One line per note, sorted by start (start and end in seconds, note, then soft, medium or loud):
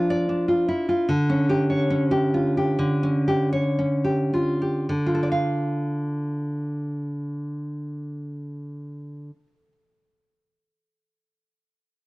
0.00 0.67 F3 medium
0.00 0.28 D4 soft
0.00 0.47 F4 medium
0.10 0.68 D5 medium
0.29 1.09 D4 soft
0.48 0.87 F4 soft
0.68 1.08 E4 soft
0.88 1.09 F4 soft
1.08 2.76 D3 medium
1.29 1.89 C#4 medium
1.49 2.10 G4 medium
1.70 2.04 C#5 medium
1.90 3.02 C#4 medium
2.11 2.56 G4 medium
2.34 3.78 F4 soft
2.57 3.26 G4 soft
2.79 4.87 D3 medium
3.03 3.77 C#4 soft
3.28 3.52 G4 medium
3.53 4.91 C#5 soft
3.79 4.91 C#4 soft
4.04 4.60 G4 soft
4.34 4.89 F4 soft
4.62 4.90 G4 soft
4.89 9.30 D3 soft
5.06 9.47 F4 soft
5.15 9.55 A4 soft
5.23 5.31 D5 soft
5.32 9.72 F5 soft